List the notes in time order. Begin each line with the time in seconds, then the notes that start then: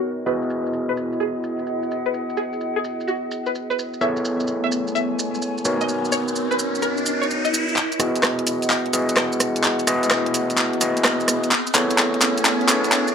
Already playing: B3 D#4 F#4 A#4 C#5 D#5
0.26 B3 E4 F#4 G#4 B4 D#5, maracas
0.42 maracas
0.50 maracas
0.58 G#4
0.66 maracas
0.73 maracas
0.89 B4
0.97 maracas
1.06 F#5
1.12 maracas
1.20 G#4, maracas
1.44 maracas
1.59 maracas
1.67 maracas
1.83 maracas
1.91 maracas
2.06 B4, maracas
2.14 maracas
2.30 maracas
2.37 G#4, maracas
2.53 maracas
2.61 maracas
2.76 G#4
2.84 maracas
3.00 maracas
3.08 F#4, maracas
3.31 maracas
3.46 B4, maracas
3.55 maracas
3.70 B4, maracas
3.79 maracas
3.94 maracas
4.01 B3 E4 G#4 A4 C#5 E5, riser, maracas
4.17 maracas
4.25 maracas
4.31 A3
4.40 C#5, maracas
4.47 maracas
4.61 E5 G#5
4.72 maracas
4.87 maracas
4.95 E5, maracas
5.19 maracas
5.34 maracas
5.42 maracas
5.58 maracas
5.65 B3 D#4 F#4 A#4 C#5, maracas
5.81 A#4 D#5, maracas
5.89 maracas
6.05 maracas
6.12 C#5, maracas
6.28 maracas
6.36 maracas
6.51 B4, maracas
6.59 D#5, maracas
6.75 maracas
6.82 A#4, maracas
6.97 maracas
7.06 maracas
7.21 C#5, maracas
7.31 maracas
7.45 D#5, maracas
7.54 maracas
7.68 maracas
7.76 E4, clap, riser, maracas
7.92 closed hi-hat, maracas
7.96 B3 E4 F#4 G#4 D#5 F#5, cross-stick, open hi-hat, maracas
8.16 closed hi-hat, maracas
8.23 cross-stick, clap, maracas
8.39 closed hi-hat
8.47 open hi-hat, maracas
8.62 closed hi-hat, maracas
8.70 clap, maracas
8.86 closed hi-hat
8.93 B3 E4 F#4 G#4 D#5, open hi-hat, maracas
9.09 closed hi-hat, maracas
9.17 cross-stick, clap, maracas
9.32 maracas
9.40 cross-stick, open hi-hat, maracas
9.56 closed hi-hat, maracas
9.64 clap, maracas
9.79 closed hi-hat, maracas
9.87 B3 E4 F#4 G#4 D#5, cross-stick, open hi-hat, maracas
10.03 closed hi-hat, maracas
10.10 cross-stick, clap, maracas
10.26 closed hi-hat
10.34 open hi-hat, maracas
10.50 closed hi-hat, maracas
10.57 clap, maracas
10.73 closed hi-hat
10.81 B3 E4 F#4 G#4 D#5, open hi-hat, maracas
10.97 closed hi-hat, maracas
11.04 cross-stick, clap, maracas
11.20 maracas
11.28 cross-stick, open hi-hat, maracas
11.43 closed hi-hat, maracas
11.51 B3, clap, maracas
11.67 A3, closed hi-hat, maracas
11.74 B3 E4 G#4 A4 C#5, clap, open hi-hat, maracas
11.90 closed hi-hat, maracas
11.96 C#5 G#5, clap, maracas
12.14 closed hi-hat
12.21 clap, open hi-hat, maracas
12.38 closed hi-hat, maracas
12.45 clap, maracas
12.61 closed hi-hat
12.68 B3 E4 G#4 A4 C#5, clap, open hi-hat, maracas
12.84 closed hi-hat, maracas
12.92 clap, maracas
13.08 maracas